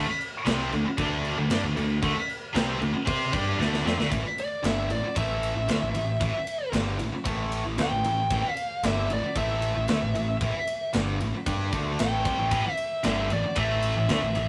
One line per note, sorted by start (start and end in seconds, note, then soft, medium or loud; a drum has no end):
0.07 muted distorted electric guitar stroke medium
0.07 muted picked electric bass stroke soft
0.21 crash medium
0.46 0.71 C2 loud
0.46 0.71 C3 loud
0.46 0.72 G3 medium
0.46 0.72 C4 medium
0.46 snare loud
0.46 crash medium
0.72 0.85 D2 medium
0.72 0.84 D3 medium
0.72 0.86 A3 medium
0.72 crash medium
0.86 muted distorted electric guitar stroke medium
0.86 muted picked electric bass stroke soft
0.98 1.35 D2 loud
0.98 1.37 D3 medium
0.98 1.37 A3 loud
0.98 1.37 D4 loud
0.98 kick loud
0.98 crash medium
1.25 crash medium
1.38 1.50 D2 medium
1.38 1.51 D3 medium
1.38 1.50 A3 medium
1.50 1.63 G2 medium
1.50 1.63 G3 medium
1.50 1.63 D4 loud
1.50 snare loud
1.50 crash medium
1.63 1.76 D2 medium
1.63 1.75 D3 medium
1.63 1.75 A3 medium
1.76 2.01 D2 medium
1.76 1.97 D3 medium
1.76 1.97 A3 medium
1.76 crash medium
2.02 2.15 D2 medium
2.02 2.14 D3 loud
2.02 2.15 A3 loud
2.02 kick loud
2.02 crash medium
2.15 muted distorted electric guitar stroke medium
2.15 muted picked electric bass stroke soft
2.29 crash medium
2.55 2.79 C2 loud
2.55 2.80 C3 medium
2.55 2.80 G3 medium
2.55 2.81 C4 medium
2.55 snare loud
2.55 crash medium
2.80 2.93 D2 medium
2.80 2.92 D3 medium
2.80 2.94 A3 medium
2.80 crash medium
2.93 muted distorted electric guitar stroke medium
2.93 muted picked electric bass stroke soft
3.06 3.31 C3 medium
3.06 3.32 C4 loud
3.06 3.32 G4 loud
3.06 3.33 C5 loud
3.06 kick loud
3.06 crash medium
3.33 3.58 G2 loud
3.33 3.58 G3 medium
3.33 3.59 D4 loud
3.33 3.59 G4 loud
3.33 kick loud
3.33 crash medium
3.58 3.84 D2 medium
3.58 3.84 D3 medium
3.58 3.85 A3 loud
3.58 3.85 D4 loud
3.58 snare medium
3.74 snare medium
3.85 3.98 F2 loud
3.85 3.97 F3 medium
3.85 3.98 C4 medium
3.85 snare loud
3.98 4.11 D2 medium
3.98 4.10 D3 loud
3.98 4.11 A3 loud
3.98 snare medium
4.10 4.24 A1 medium
4.10 4.23 A2 medium
4.10 4.24 E3 loud
4.10 kick loud
4.10 ride medium
4.24 muted distorted electric guitar stroke medium
4.24 muted picked electric bass stroke soft
4.38 4.64 D5 loud
4.38 ride medium
4.63 4.88 G1 medium
4.63 4.89 G2 medium
4.63 4.89 D3 medium
4.63 4.90 G3 loud
4.63 4.90 E5 medium
4.63 snare loud
4.63 ride medium
4.90 5.02 A1 medium
4.90 5.03 A2 medium
4.90 5.04 E3 medium
4.90 5.16 D5 medium
4.90 ride medium
5.03 muted picked electric bass stroke soft
5.03 muted distorted electric guitar stroke medium
5.15 5.53 A1 medium
5.15 5.54 A2 medium
5.15 5.55 E3 loud
5.15 5.55 A3 loud
5.15 6.71 E5 loud
5.15 kick loud
5.15 ride medium
5.43 ride medium
5.55 5.68 A1 medium
5.55 5.68 A2 medium
5.55 5.68 E3 medium
5.68 5.81 D2 medium
5.68 5.81 D3 medium
5.68 5.81 A3 medium
5.68 snare loud
5.68 ride medium
5.81 5.94 A1 medium
5.81 5.93 A2 medium
5.81 5.93 E3 medium
5.94 6.19 A1 medium
5.94 6.16 A2 medium
5.94 6.16 E3 medium
5.94 ride medium
6.20 6.33 A1 medium
6.20 6.33 A2 medium
6.20 6.34 E3 loud
6.20 kick medium
6.20 ride medium
6.34 muted picked electric bass stroke soft
6.34 muted distorted electric guitar stroke medium
6.47 ride medium
6.72 6.98 G1 loud
6.72 6.99 G2 medium
6.72 6.98 D3 medium
6.72 6.98 G3 medium
6.72 snare loud
6.72 ride loud
6.98 7.11 A1 medium
6.98 7.11 A2 medium
6.98 7.13 E3 medium
6.98 ride medium
7.12 muted picked electric bass stroke soft
7.12 muted distorted electric guitar stroke medium
7.24 7.63 A1 medium
7.24 7.64 A2 medium
7.24 7.64 E3 loud
7.24 7.65 A3 loud
7.24 kick loud
7.24 ride medium
7.52 ride medium
7.65 7.78 A1 medium
7.65 7.77 A2 medium
7.65 7.79 E3 medium
7.78 7.90 D2 medium
7.78 7.91 D3 medium
7.78 7.91 A3 loud
7.78 8.52 G5 loud
7.78 snare loud
7.78 ride medium
7.91 8.04 A1 medium
7.91 8.04 A2 medium
7.91 8.04 E3 medium
8.04 8.29 A1 medium
8.04 8.26 A2 medium
8.04 8.26 E3 medium
8.04 ride medium
8.31 8.43 A1 medium
8.31 8.43 A2 loud
8.31 8.44 E3 loud
8.31 kick loud
8.31 ride medium
8.44 muted picked electric bass stroke soft
8.44 muted distorted electric guitar stroke medium
8.52 8.82 F5 loud
8.57 ride medium
8.83 9.08 G1 loud
8.83 9.09 G2 medium
8.83 9.10 D3 medium
8.83 9.10 G3 medium
8.83 9.10 E5 medium
8.83 snare loud
8.83 ride loud
9.10 9.22 A1 medium
9.10 9.22 A2 medium
9.10 9.23 E3 medium
9.10 9.37 D5 medium
9.10 ride medium
9.23 muted picked electric bass stroke soft
9.23 muted distorted electric guitar stroke medium
9.36 9.73 A1 medium
9.36 9.74 A2 medium
9.36 9.74 E3 loud
9.36 9.75 A3 loud
9.36 10.91 E5 loud
9.36 kick loud
9.36 ride medium
9.62 ride medium
9.75 9.88 A1 medium
9.75 9.88 A2 medium
9.75 9.89 E3 medium
9.88 10.01 D2 medium
9.88 10.00 D3 medium
9.88 10.01 A3 medium
9.88 snare loud
9.88 ride medium
10.01 10.14 A1 medium
10.01 10.13 A2 medium
10.01 10.14 E3 medium
10.14 10.40 A1 medium
10.14 10.36 A2 medium
10.14 10.36 E3 medium
10.14 ride medium
10.41 10.53 A1 medium
10.41 10.53 A2 medium
10.41 10.54 E3 loud
10.41 kick medium
10.41 ride medium
10.54 muted distorted electric guitar stroke medium
10.54 muted picked electric bass stroke soft
10.67 ride medium
10.93 11.19 G1 loud
10.93 11.19 G2 medium
10.93 11.20 D3 loud
10.93 11.20 G3 medium
10.93 snare loud
10.93 ride medium
11.20 11.33 A1 medium
11.20 11.33 A2 medium
11.20 11.34 E3 medium
11.20 ride medium
11.34 muted distorted electric guitar stroke medium
11.34 muted picked electric bass stroke soft
11.46 11.71 G2 medium
11.46 11.72 G3 medium
11.46 11.72 D4 loud
11.46 11.73 G4 loud
11.46 kick loud
11.46 ride loud
11.73 11.97 D2 medium
11.73 11.98 D3 medium
11.73 11.99 A3 medium
11.73 11.99 D4 medium
11.73 kick loud
11.73 ride medium
11.99 12.24 A1 medium
11.99 12.25 A2 medium
11.99 12.25 E3 medium
11.99 12.25 A3 medium
11.99 12.74 G5 loud
11.99 snare loud
11.99 ride medium
12.25 12.38 C2 loud
12.25 12.38 C3 medium
12.25 12.38 G3 medium
12.25 kick loud
12.25 ride medium
12.39 12.51 A1 medium
12.39 12.50 A2 medium
12.39 12.51 E3 medium
12.51 12.64 A1 medium
12.51 12.64 A2 medium
12.51 12.64 E3 loud
12.51 kick loud
12.51 ride loud
12.65 muted distorted electric guitar stroke medium
12.65 muted picked electric bass stroke soft
12.74 13.02 E5 loud
12.74 ride medium
13.04 13.29 G1 loud
13.04 13.29 G2 medium
13.04 13.30 D3 medium
13.04 13.30 G3 medium
13.04 13.31 E5 loud
13.04 snare loud
13.04 ride loud
13.30 13.43 A1 medium
13.30 13.43 A2 medium
13.30 13.44 E3 medium
13.30 13.57 D5 medium
13.30 ride medium
13.44 muted picked electric bass stroke soft
13.44 muted distorted electric guitar stroke medium
13.56 13.93 A1 medium
13.56 13.94 A2 medium
13.56 13.95 E3 medium
13.56 13.96 A3 medium
13.56 14.48 E5 loud
13.56 kick loud
13.56 ride loud
13.83 ride medium
13.95 14.08 A1 medium
13.95 14.08 A2 medium
13.95 14.09 E3 medium
14.08 14.21 D2 medium
14.08 14.21 D3 medium
14.08 14.22 A3 medium
14.08 snare loud
14.08 ride medium
14.22 14.34 A1 medium
14.22 14.35 A2 medium
14.22 14.35 E3 medium
14.35 14.48 A1 medium
14.35 14.48 A2 medium
14.35 14.48 E3 medium
14.35 ride medium